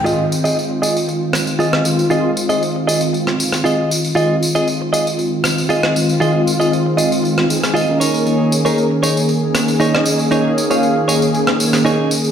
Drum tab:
TB |x-xxx-xxx-xxx-xx|x-xxx-xxx-xxx-xx|x-xxx-xxx-xxx-xx|x-xxx-xxx-xxx-xx|
SD |----------r--r--|---------r-r----|----------r--r--|---------r-r----|

TB |x-xxx-xxx-xxx-xx|x-xxx-xxx-xxx-xx|
SD |----------r--r--|---------r-r----|